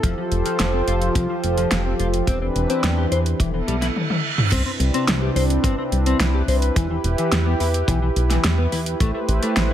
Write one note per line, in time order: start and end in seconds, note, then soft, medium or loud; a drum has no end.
0.00 0.15 F1 loud
0.00 2.25 F3 medium
0.00 0.14 F3 medium
0.00 2.25 F4 medium
0.00 3.36 G4 medium
0.00 2.24 A4 medium
0.00 2.25 C5 medium
0.00 kick loud
0.00 closed hi-hat medium
0.18 0.22 F3 medium
0.32 0.43 F1 loud
0.32 closed hi-hat medium
0.46 0.56 F3 loud
0.46 closed hi-hat medium
0.60 0.82 F1 medium
0.60 snare loud
0.60 closed hi-hat medium
0.74 0.81 C4 medium
0.88 1.10 F1 medium
0.88 0.95 F4 medium
0.88 closed hi-hat medium
1.02 closed hi-hat medium
1.15 1.27 C2 medium
1.15 1.26 F3 medium
1.15 kick loud
1.15 closed hi-hat medium
1.30 1.34 F3 medium
1.44 1.66 F1 loud
1.44 closed hi-hat medium
1.58 1.68 F3 loud
1.58 closed hi-hat medium
1.71 1.94 F1 loud
1.71 snare loud
1.71 closed hi-hat medium
1.86 1.93 C4 medium
2.00 2.22 F1 medium
2.00 2.07 F4 medium
2.00 closed hi-hat medium
2.14 closed hi-hat medium
2.27 2.50 E1 loud
2.27 3.39 E3 medium
2.27 3.39 C4 medium
2.27 2.38 C4 medium
2.27 3.39 D4 medium
2.27 3.39 B4 medium
2.27 kick loud
2.27 closed hi-hat medium
2.42 2.46 C4 medium
2.56 2.67 E1 medium
2.56 closed hi-hat medium
2.70 2.80 C4 loud
2.70 closed hi-hat medium
2.84 3.06 E2 medium
2.84 snare loud
2.84 closed hi-hat medium
2.98 3.05 G4 medium
3.12 3.34 E2 medium
3.12 3.19 C5 medium
3.12 closed hi-hat medium
3.26 closed hi-hat medium
3.39 3.62 E1 loud
3.39 3.50 E3 medium
3.39 3.95 B3 medium
3.39 3.95 E4 medium
3.39 3.95 A4 medium
3.39 kick loud
3.39 closed hi-hat medium
3.39 reverse cymbal medium
3.54 3.58 E3 medium
3.68 3.90 B1 medium
3.68 3.75 G3 loud
3.68 closed hi-hat medium
3.82 3.86 E4 loud
3.82 snare soft
3.82 closed hi-hat medium
3.96 high tom medium
4.10 high tom medium
4.38 mid tom medium
4.52 4.63 C2 loud
4.52 6.74 C3 medium
4.52 6.74 C4 medium
4.52 4.62 C4 medium
4.52 6.74 D4 medium
4.52 8.96 E4 medium
4.52 8.96 B4 medium
4.52 kick loud
4.52 closed hi-hat loud
4.52 crash loud
4.66 4.70 C4 medium
4.80 4.91 C2 loud
4.80 closed hi-hat medium
4.94 5.05 C4 loud
4.94 closed hi-hat medium
5.08 5.31 C2 medium
5.08 snare loud
5.08 closed hi-hat loud
5.22 5.29 G4 medium
5.36 5.59 C2 medium
5.36 5.43 C5 medium
5.36 open hi-hat medium
5.50 closed hi-hat medium
5.64 5.75 G1 medium
5.64 5.75 C4 medium
5.64 kick loud
5.64 closed hi-hat medium
5.78 5.82 C4 medium
5.92 6.15 C2 medium
5.92 closed hi-hat medium
6.06 6.17 C4 loud
6.06 closed hi-hat medium
6.20 6.43 C2 loud
6.20 snare loud
6.20 closed hi-hat loud
6.34 6.41 G4 medium
6.48 6.71 C2 medium
6.48 6.55 C5 medium
6.48 open hi-hat medium
6.62 closed hi-hat medium
6.76 6.99 E1 loud
6.76 6.87 E3 medium
6.76 8.98 G4 medium
6.76 kick loud
6.76 closed hi-hat loud
6.90 6.95 E3 medium
7.04 7.16 E1 medium
7.04 closed hi-hat medium
7.18 7.29 E3 loud
7.18 closed hi-hat medium
7.32 7.55 E2 medium
7.32 snare loud
7.32 closed hi-hat loud
7.46 7.53 B3 medium
7.60 7.83 E2 medium
7.60 7.67 E4 medium
7.60 open hi-hat medium
7.74 closed hi-hat medium
7.88 8.11 B1 loud
7.88 7.99 E3 medium
7.88 kick loud
7.88 closed hi-hat loud
8.02 8.07 E3 medium
8.16 8.39 B1 medium
8.16 closed hi-hat medium
8.30 8.41 E3 loud
8.30 snare soft
8.30 closed hi-hat medium
8.44 8.67 E2 medium
8.44 snare loud
8.44 closed hi-hat loud
8.58 8.65 B3 medium
8.72 8.95 E2 medium
8.72 8.79 E4 medium
8.72 open hi-hat medium
8.86 closed hi-hat medium
9.00 9.12 A1 loud
9.00 9.73 A3 medium
9.00 9.11 A3 medium
9.00 9.73 E4 medium
9.00 9.73 G4 medium
9.00 9.73 B4 medium
9.00 9.73 C5 medium
9.00 kick loud
9.00 closed hi-hat loud
9.14 9.19 A3 medium
9.28 9.40 A1 loud
9.28 closed hi-hat medium
9.43 9.53 A3 loud
9.43 closed hi-hat medium
9.57 9.73 A1 medium
9.57 snare loud
9.57 closed hi-hat medium